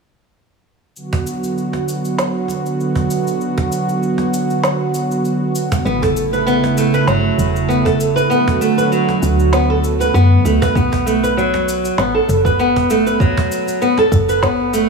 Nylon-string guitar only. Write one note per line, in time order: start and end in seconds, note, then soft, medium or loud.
5.85 6.00 B3 medium
6.02 6.15 A4 medium
6.33 6.45 B4 medium
6.47 6.76 B3 medium
6.78 6.93 A3 medium
6.94 7.06 B4 medium
7.08 7.68 F#3 medium
7.69 7.84 B3 medium
7.85 7.99 A4 medium
8.16 8.29 B4 medium
8.30 8.59 B3 medium
8.61 8.77 A3 medium
8.78 8.90 B4 medium
8.92 9.52 F#3 medium
9.53 9.68 B3 medium
9.70 9.83 A4 medium
10.01 10.13 B4 medium
10.14 10.43 B3 loud
10.45 10.61 A3 medium
10.62 10.74 B4 medium
10.76 11.05 B3 medium
11.06 11.22 A3 medium
11.23 11.36 B4 medium
11.37 11.97 F#3 medium
11.98 12.13 B3 medium
12.15 12.28 A4 medium
12.45 12.58 B4 medium
12.59 12.88 B3 loud
12.90 13.06 A3 medium
13.06 13.19 B4 medium
13.20 13.80 F#3 medium
13.82 13.96 B3 medium
13.98 14.12 A4 medium
14.29 14.41 B4 medium
14.43 14.72 B3 medium
14.73 14.89 A3 medium